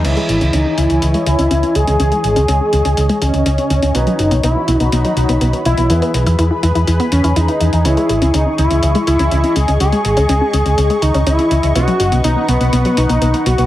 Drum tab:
CC |x---------------|----------------|----------------|----------------|
HH |xxxxx-xxxxxxxxxx|xxxxx-xxxxxxxxxx|xxxxx-xxxxxxxxxx|xxxxx-xxxxxxxxxx|

CC |----------------|----------------|----------------|
HH |xxxxx-xxxxxxxxxx|xxxxx-xxxxxxxxxx|xxxxx-xxxxxxxxxx|